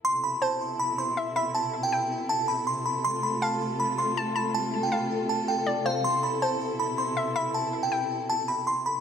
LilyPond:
<<
  \new Staff \with { instrumentName = "Synth bell" } { \time 4/4 \key a \minor \tempo 4 = 160 c'''8 b''8 a''4 b''8 c'''4 b''8 | a''8. g''4~ g''16 a''8 b''8 c'''8 b''8 | c'''8 b''8 a''4 b''8 c'''4 b''8 | a''8. g''4~ g''16 a''8 g''4 f''8 |
c'''8 b''8 a''4 b''8 c'''4 b''8 | a''8. g''4~ g''16 a''8 b''8 c'''8 b''8 | }
  \new Staff \with { instrumentName = "Synth pluck" } { \time 4/4 \key a \minor r4 c''2 e''8 e''8 | r4 g''2. | r4 f''2 a''8 a''8 | r4 f''2 d''8 c''8 |
r4 c''2 e''8 e''8 | r4 g''2. | }
  \new Staff \with { instrumentName = "String section" } { \time 4/4 \key a \minor << { <c a'>1~ | <c a'>1~ | <c a'>1~ | <c a'>1~ |
<c a'>1~ | <c a'>1 | } \\ { <b, e'>1~ | <b, e'>1 | <a f'>1~ | <a f'>1 |
<b, e'>1~ | <b, e'>1 | } >> }
>>